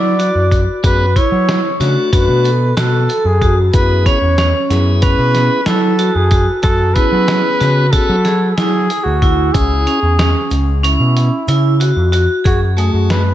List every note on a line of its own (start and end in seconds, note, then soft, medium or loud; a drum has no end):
0.00 0.28 F#3 medium
0.00 0.11 E4 medium
0.00 0.60 D5 loud
0.19 0.43 F#4 medium
0.19 closed hi-hat medium
0.35 0.63 F#2 medium
0.51 0.75 F#4 medium
0.51 kick medium
0.51 closed hi-hat medium
0.83 1.11 F#2 medium
0.83 1.06 B3 medium
0.83 1.06 C#4 medium
0.83 1.08 F#4 medium
0.83 1.06 G#4 medium
0.83 1.19 B4 loud
0.83 kick loud
0.83 closed hi-hat medium
0.83 shaker medium
1.16 1.64 E4 medium
1.16 1.81 C#5 medium
1.16 kick medium
1.16 closed hi-hat medium
1.32 1.59 F#3 medium
1.49 snare medium
1.49 closed hi-hat medium
1.80 1.94 C#3 medium
1.80 2.11 A3 medium
1.80 2.11 D4 medium
1.80 2.11 F#4 medium
1.80 2.05 F#4 medium
1.80 snare soft
1.80 closed hi-hat soft
1.80 shaker soft
2.12 2.26 F#2 medium
2.12 2.51 A3 medium
2.12 2.51 D4 medium
2.12 2.51 F#4 medium
2.12 2.37 F#4 medium
2.12 2.73 B4 medium
2.12 kick loud
2.12 closed hi-hat medium
2.28 2.70 B2 medium
2.45 2.69 A4 medium
2.45 closed hi-hat soft
2.77 3.05 B2 medium
2.77 3.01 F#4 medium
2.77 3.28 A4 medium
2.77 snare medium
2.77 closed hi-hat medium
2.77 shaker medium
3.09 3.33 A4 medium
3.09 closed hi-hat medium
3.09 shaker soft
3.25 3.67 F#2 medium
3.25 3.58 G#4 medium
3.42 3.90 F#4 medium
3.42 kick medium
3.42 closed hi-hat soft
3.73 4.01 F#2 medium
3.73 4.19 B3 medium
3.73 4.19 E4 medium
3.73 4.19 G#4 medium
3.73 4.08 B4 loud
3.73 kick loud
3.73 closed hi-hat medium
3.73 shaker medium
4.06 4.30 C#4 medium
4.06 4.71 C#5 medium
4.06 kick medium
4.06 snare soft
4.06 closed hi-hat medium
4.22 4.50 E2 medium
4.38 4.87 C#4 medium
4.38 snare medium
4.38 closed hi-hat medium
4.70 5.12 F#2 medium
4.70 5.61 B3 medium
4.70 5.61 E4 medium
4.70 5.61 G#4 medium
4.70 snare soft
4.70 closed hi-hat medium
4.70 shaker soft
5.02 5.51 C#4 medium
5.02 5.69 B4 loud
5.02 kick loud
5.02 closed hi-hat medium
5.18 5.46 B2 loud
5.35 snare soft
5.35 closed hi-hat medium
5.66 6.09 F#3 medium
5.66 5.91 E4 medium
5.66 6.17 A4 medium
5.66 snare loud
5.66 closed hi-hat medium
5.66 shaker medium
5.99 6.23 F#4 medium
5.99 closed hi-hat medium
5.99 shaker soft
6.15 6.43 F#2 medium
6.15 6.48 G#4 medium
6.31 6.56 F#4 medium
6.31 kick medium
6.31 closed hi-hat medium
6.63 6.91 F#2 medium
6.63 6.88 F#4 medium
6.63 6.96 A4 loud
6.63 kick loud
6.63 closed hi-hat medium
6.63 shaker medium
6.94 7.87 B3 medium
6.94 7.87 C#4 soft
6.94 7.44 E4 medium
6.94 7.86 G#4 medium
6.94 7.93 B4 loud
6.94 kick medium
6.94 closed hi-hat medium
7.12 7.40 F#3 medium
7.28 snare medium
7.28 closed hi-hat medium
7.60 7.89 C#3 medium
7.60 7.85 F#4 medium
7.60 snare soft
7.60 closed hi-hat medium
7.60 shaker soft
7.91 8.16 B3 medium
7.91 8.16 C#4 medium
7.91 8.17 F#4 medium
7.91 8.16 G#4 medium
7.91 8.50 A4 medium
7.91 kick medium
7.91 closed hi-hat medium
8.09 8.51 F#3 medium
8.25 8.49 G#4 medium
8.25 snare soft
8.25 closed hi-hat medium
8.51 8.57 A4 medium
8.55 8.85 F#3 medium
8.55 8.82 E4 medium
8.55 9.05 G#4 medium
8.55 snare medium
8.55 closed hi-hat medium
8.55 shaker medium
8.90 9.14 G#4 medium
8.90 closed hi-hat medium
8.90 shaker soft
9.04 9.47 D2 medium
9.04 9.54 F#4 medium
9.22 9.71 E4 medium
9.22 kick medium
9.22 closed hi-hat soft
9.53 9.82 C#2 medium
9.53 10.00 C#4 medium
9.53 10.00 E4 medium
9.53 10.56 G#4 medium
9.53 10.00 G#4 medium
9.53 kick loud
9.53 closed hi-hat medium
9.53 shaker medium
9.87 10.11 C#4 medium
9.87 closed hi-hat medium
9.87 shaker soft
10.03 10.30 E2 medium
10.19 10.67 C#4 medium
10.19 snare medium
10.19 closed hi-hat medium
10.51 10.93 C#2 medium
10.51 closed hi-hat medium
10.51 shaker soft
10.83 11.32 C#4 medium
10.83 11.77 E4 medium
10.83 closed hi-hat medium
11.00 11.27 B2 medium
11.17 closed hi-hat medium
11.48 11.89 C#3 medium
11.48 11.72 E4 medium
11.48 closed hi-hat medium
11.48 shaker medium
11.80 12.05 F#4 medium
11.80 closed hi-hat medium
11.96 12.24 F2 medium
12.12 12.37 F#4 medium
12.12 closed hi-hat medium
12.44 12.87 F#2 medium
12.44 12.60 F#4 medium
12.44 12.69 G#4 medium
12.44 kick loud
12.44 closed hi-hat medium
12.77 13.22 A3 soft
12.77 13.25 A3 medium
12.77 13.22 F#4 soft
12.77 13.23 G#4 medium
12.77 12.92 G#4 medium
12.77 closed hi-hat medium
12.93 13.34 F#2 medium
13.10 13.34 B4 medium
13.10 snare medium
13.10 closed hi-hat medium